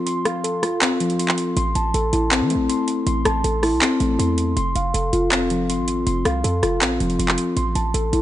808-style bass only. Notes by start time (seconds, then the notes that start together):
1.57 A1
1.75 A1
1.94 A1
2.13 A1
2.41 E3
2.55 A1
3.07 A1
3.25 A1
3.44 A1
3.72 B1
4.00 A1
4.19 E2
4.57 F1
4.75 F1
4.94 F1
5.13 F1
5.79 G#1
6.07 F1
6.25 C2
6.44 F2
6.63 F1
6.82 A1
7.00 F1
7.19 F1
7.57 A1
7.75 A1
7.94 A1
8.13 A1